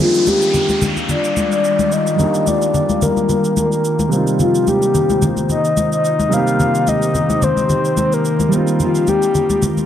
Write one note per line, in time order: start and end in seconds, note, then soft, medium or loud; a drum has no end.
0.00 9.86 D#3 medium
0.00 2.14 G3 medium
0.00 4.08 G3 medium
0.00 2.15 A#3 medium
0.00 0.13 C4 medium
0.00 2.16 D4 medium
0.00 2.16 D#4 medium
0.00 6.28 F4 medium
0.00 0.29 F4 loud
0.00 2.17 F4 medium
0.00 0.13 G#4 medium
0.00 4.08 F5 medium
0.00 downlifter medium
0.14 shaker soft
0.27 0.82 G4 loud
0.27 high conga medium
0.27 shaker medium
0.42 shaker medium
0.54 low conga medium
0.54 shaker medium
0.69 high conga medium
0.69 shaker medium
0.82 high conga medium
0.82 low conga medium
0.82 shaker medium
0.97 high conga medium
0.97 shaker soft
1.09 1.50 D5 loud
1.09 low conga medium
1.09 shaker medium
1.24 shaker soft
1.37 high conga medium
1.37 shaker medium
1.52 1.94 D5 loud
1.52 shaker soft
1.64 shaker medium
1.79 high conga medium
1.79 shaker medium
1.92 2.49 D#5 loud
1.92 shaker medium
2.07 shaker medium
2.16 4.06 G3 medium
2.16 4.07 A#3 medium
2.16 4.08 D4 medium
2.16 low conga medium
2.16 shaker medium
2.22 4.09 D#4 medium
2.22 4.10 G4 medium
2.34 shaker medium
2.47 3.02 D5 loud
2.47 high conga medium
2.47 shaker medium
2.62 shaker medium
2.74 low conga medium
2.74 shaker medium
2.89 high conga medium
2.89 shaker medium
3.02 3.54 A#4 medium
3.02 high conga medium
3.02 low conga medium
3.02 shaker medium
3.17 high conga medium
3.17 shaker soft
3.29 low conga medium
3.29 shaker medium
3.45 shaker soft
3.57 3.72 A#4 medium
3.57 high conga medium
3.57 shaker medium
3.72 4.10 A#4 medium
3.72 shaker soft
3.85 shaker medium
3.99 high conga medium
3.99 shaker medium
4.08 6.26 C3 medium
4.08 6.27 G3 medium
4.08 6.28 A#3 medium
4.08 9.86 A#3 medium
4.08 8.48 D#4 medium
4.08 8.48 C5 medium
4.08 shaker medium
4.13 6.29 C4 medium
4.13 6.29 D#4 medium
4.13 6.30 F4 medium
4.27 shaker medium
4.40 4.70 F4 loud
4.40 low conga medium
4.40 shaker medium
4.55 shaker medium
4.67 5.23 G4 loud
4.67 high conga medium
4.67 shaker medium
4.82 shaker medium
4.95 low conga medium
4.95 shaker medium
5.10 high conga medium
5.10 shaker medium
5.22 high conga medium
5.22 low conga medium
5.22 shaker medium
5.37 high conga medium
5.37 shaker soft
5.49 5.90 D#5 loud
5.49 low conga medium
5.49 shaker medium
5.65 shaker soft
5.77 high conga medium
5.77 shaker medium
5.92 6.35 D#5 loud
5.92 shaker soft
6.05 shaker medium
6.19 high conga medium
6.19 shaker medium
6.29 8.47 C3 medium
6.29 8.47 G3 medium
6.29 8.48 A#3 medium
6.29 8.50 G4 medium
6.29 shaker medium
6.33 8.49 C4 medium
6.33 8.50 D#4 medium
6.33 8.50 G4 medium
6.33 6.90 F5 loud
6.47 shaker medium
6.60 low conga medium
6.60 shaker medium
6.75 shaker medium
6.87 7.45 D#5 loud
6.87 high conga medium
6.87 shaker medium
7.02 shaker medium
7.15 low conga medium
7.15 shaker medium
7.30 high conga medium
7.30 shaker soft
7.42 7.98 C5 medium
7.42 high conga medium
7.42 low conga medium
7.42 shaker medium
7.57 high conga medium
7.57 shaker soft
7.70 low conga medium
7.70 shaker medium
7.85 shaker soft
7.97 8.15 C5 medium
7.97 high conga medium
7.97 shaker medium
8.13 8.53 A#4 medium
8.13 shaker soft
8.25 shaker medium
8.40 high conga medium
8.40 shaker medium
8.49 9.86 G3 medium
8.49 9.86 A#3 medium
8.49 9.86 C4 medium
8.49 9.86 F4 medium
8.49 9.86 G4 medium
8.49 shaker medium
8.55 9.86 D#4 medium
8.55 9.86 F4 medium
8.68 shaker medium
8.80 9.10 F4 loud
8.80 low conga medium
8.80 shaker medium
8.95 shaker medium
9.07 9.63 G4 loud
9.07 high conga medium
9.07 shaker medium
9.23 shaker medium
9.35 low conga medium
9.35 shaker medium
9.50 high conga medium
9.50 shaker medium
9.62 high conga medium
9.62 low conga medium
9.62 shaker medium
9.77 high conga soft
9.77 shaker soft